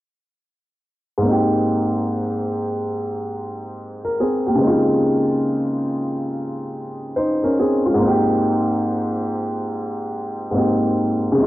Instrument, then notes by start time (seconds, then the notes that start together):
upright piano
1.18 G#2 A#3
1.25 C4 D#4
1.31 G4
4.05 A#4
4.20 C4 G#4
4.47 A#3 G4
4.55 C#3 G#3
4.61 C4 D#4
4.67 F4 G4
7.16 D#4 C5
7.44 C#4 A#4
7.59 C4 G#4
7.86 G#3 F4
7.94 G#2 A#3
8.01 C4 D#4
8.08 G4
10.51 G#2 A#3 C4
10.56 D#4 G4
11.32 C#3 G#3
11.37 C3 D#4
11.43 F4